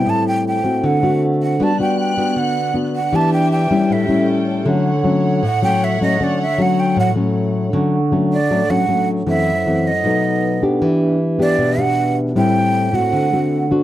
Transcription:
<<
  \new Staff \with { instrumentName = "Flute" } { \time 4/4 \key d \major \tempo 4 = 156 a''8 g''8 g''4 fis''4 r8 fis''8 | a''8 g''8 g''4 fis''4 r8 fis''8 | a''8 g''8 g''4 e''4 r4 | r2 fis''8 g''8 e''8 ees''8 |
d''8 e''8 fis''8 g''8 fis''8 r4. | r4. d''4 fis''4 r8 | e''4. ees''2 r8 | r4. d''4 fis''4 r8 |
g''4. fis''2 r8 | }
  \new Staff \with { instrumentName = "String section" } { \time 4/4 \key d \major r1 | <b fis'''>1 | <d' g' e''>2 <cis' a' g''>2 | <cis'' fis''>1~ |
<cis'' fis''>1 | r1 | r1 | r1 |
r1 | }
  \new Staff \with { instrumentName = "Vibraphone" } { \time 4/4 \key d \major << { r1 | r1 | r1 | r1 |
r1 | r1 | r2. b'4 | r1 |
r1 | } \\ { <e' a' c'' g''>2 <d' a' c'' fis''>2 | <d' b' d''>1 | <d' g' b' e''>2 <cis' g' a' e''>2 | <a' cis'' fis''>1~ |
<a' cis'' fis''>1 | <d' a' fis'' cis'''>2.~ <d' a' fis'' cis'''>8 <d' a' cis'' fis''>8 | <e' a' c'' fis''>2 <dis' a' b' fis''>2 | <d' g' b' e''>1 |
<e' a' c'' g''>2 <d' a' c'' fis''>2 | } >> }
  \new Staff \with { instrumentName = "Nylon-string guitar" } { \time 4/4 \key d \major << { <g c' e'>4. <a c' fis'>4 <a c' fis'>4. | <b d' fis'>8 <b d' fis'>4 <b d' fis'>4. <b d' fis'>8 r8 | <b d' g'>4 r8 <g cis' e'>4 <g cis' e'>4. | <fis a cis'>8 r8 <fis a cis'>4 r8 <fis a cis'>4 <fis a cis'>8 |
<fis a cis'>8 r8 <fis a cis'>4. <fis a cis'>4. | <fis a cis'>8 r8 <fis a cis'>8 r8 <fis a cis'>8 <fis a cis'>8 <fis a cis'>4 | <e a c'>8 r8 <e a c'>8 r8 <fis a dis'>4. <b d' g'>8~ | <b d' g'>4 r8 <b d' g'>4 <b d' g'>4. |
<g c' e'>4. <a c' fis'>4 <a c' fis'>4 <b d' fis'>8 | } \\ { a,2 d2 | g2 d2 | e2 a,2 | d2 a,2 |
d2 a,2 | d2 a,2 | fis,2 b,2 | e2 b,2 |
a,2 d2 | } >> }
>>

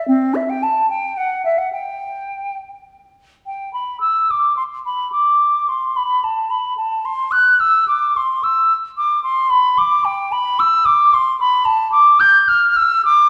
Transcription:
\new Staff \with { instrumentName = "Flute" } { \time 6/8 \key g \major \tempo 4. = 73 c'8 e''16 g''16 a''8 g''8 fis''8 e''16 fis''16 | g''4. r4. | g''8 b''8 e'''8 d'''8 c'''8 b''8 | d'''4 c'''8 b''8 a''8 b''8 |
a''8 c'''8 fis'''8 e'''8 d'''8 c'''8 | e'''4 d'''8 c'''8 b''8 d'''8 | \key d \dorian g''8 b''8 e'''8 d'''8 c'''8 b''8 | a''8 d'''8 g'''8 f'''8 e'''8 d'''8 | }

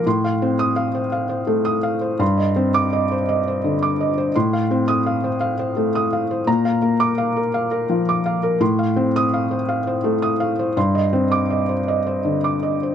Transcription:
<<
  \new Staff \with { instrumentName = "Felt piano" } { \time 6/8 \key f \mixolydian \tempo 4. = 56 << { r8. ees'''8 r4. r16 | r8. d'''8 r4. r16 | r8. ees'''8 r4. r16 | r8. d'''8 r4. r16 |
r8. ees'''8 r4. r16 | r8. d'''8 r4. r16 | } \\ { c'''16 f''16 c''8 f''16 c''16 f''16 c''16 a16 ees'''16 f''16 c''16 | c'''16 ees''16 c''8 ees''16 c''16 ees''16 c''16 d16 d'''16 ees''16 c''16 | c'''16 f''16 c''8 f''16 c''16 f''16 c''16 a16 ees'''16 f''16 c''16 | bes''16 f''16 bes'8 f''16 bes'16 f''16 bes'16 f16 d'''16 f''16 bes'16 |
c'''16 f''16 c''8 f''16 c''16 f''16 c''16 a16 ees'''16 f''16 c''16 | c'''16 ees''16 c''8 ees''16 c''16 ees''16 c''16 d16 d'''16 ees''16 c''16 | } >> }
  \new Staff \with { instrumentName = "Felt piano" } { \clef bass \time 6/8 \key f \mixolydian a,8 c'4 r4. | g,8 c'4 r4. | a,8 c'4 r4. | bes,8 bes4 r4. |
a,8 c'4 r4. | g,8 c'4 r4. | }
>>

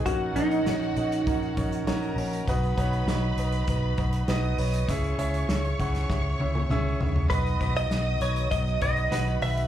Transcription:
<<
  \new Staff \with { instrumentName = "Violin section" } { \time 4/4 \key b \major \tempo 4 = 99 <fis' fis''>2. <ais' ais''>4 | <b' b''>2. <dis'' dis'''>4 | <cis'' cis'''>1 | <dis'' dis'''>2. <b' b''>4 | }
  \new Staff \with { instrumentName = "Clean electric guitar" } { \time 4/4 \key b \major fis'8 dis'2. r8 | r1 | r1 | b'8. dis''8. cis''8 dis''8 dis''4 e''8 | }
  \new Staff \with { instrumentName = "Grand piano" } { \time 4/4 \key b \major <cis' dis' fis' ais' cis''>8 <cis' dis' fis' ais' dis''>8 <cis' dis' fis' ais' cis''>8 <cis' dis' fis' ais' dis''>8 <cis' dis' fis' ais' cis''>8 <cis' dis' fis' ais' cis''>8 <cis' dis' fis' ais' cis''>8 <cis' dis' fis' ais' cis''>8 | <b dis' fis' b' dis''>8 <b dis' fis' b' cis''>8 <b dis' fis' b' dis''>8 <b dis' fis' b' dis''>8 <b dis' fis' b' dis''>8 <b dis' fis' b' dis''>8 <b dis' fis' b' dis''>8 <b dis' fis' b' cis''>8 | <cis' e' gis' cis'' e''>8 <cis' e' gis' cis'' e''>8 <cis' e' gis' cis'' e''>8 <cis' e' gis' cis'' fis''>8 <cis' e' gis' cis'' e''>8 <cis' e' gis' cis'' e''>8 <cis' e' gis' cis'' e''>8 <cis' e' gis' cis'' e''>8 | <b dis' fis' b' dis''>8 <b dis' fis' b' dis''>8 <b dis' fis' b' dis''>8 <b dis' fis' b' dis''>8 <b dis' fis' b' cis''>8 <b dis' fis' b' dis''>8 <b dis' fis' b' fis''>8 <b dis' fis' b' fis''>8 | }
  \new Staff \with { instrumentName = "Grand piano" } { \clef bass \time 4/4 \key b \major ais,4. r2 r8 | b,4. r2 r8 | cis4. r2 r8 | b,4. r2 r8 | }
  \new Staff \with { instrumentName = "Analog synth pad" } { \clef bass \time 4/4 \key b \major r1 | r1 | r1 | <dis fis b fis'>1 | }
  \new Staff \with { instrumentName = "Fingered electric bass" } { \clef bass \time 4/4 \key b \major ais,,8 ais,,8 ais,,8 ais,,8 ais,,8 ais,,8 ais,,8 ais,,8 | b,,8 b,,8 b,,8 b,,8 b,,8 b,,8 b,,8 b,,8 | cis,8 cis,8 cis,8 cis,8 cis,8 cis,8 cis,8 cis,8 | b,,8 b,,8 b,,8 b,,8 b,,8 b,,8 b,,8 b,,8 | }
  \new DrumStaff \with { instrumentName = "Drums" } \drummode { \time 4/4 <hh bd>8 hh16 hh16 <hh sn>16 hh16 hh16 hh16 <hh bd>16 hh16 <hh bd>16 hh16 <hh sn>16 hh16 hho16 hh16 | <hh bd>16 hh16 <hh bd>16 hh16 <hh sn>8 hh16 hh16 <hh bd>8 <hh bd>16 hh16 <hh sn>16 hh16 hho16 hh16 | <hh bd>16 hh16 hh16 hh16 <hh sn>16 hh16 <hh bd>16 <hh sn>16 <bd sn>8 tommh16 tommh16 toml8 tomfh16 tomfh16 | <hh bd>16 hh16 <hh bd>16 hh16 <hh sn>8 hh16 hh16 <hh bd>16 hh16 <hh bd>16 hh16 <hh sn>16 hh16 hho16 hh16 | }
>>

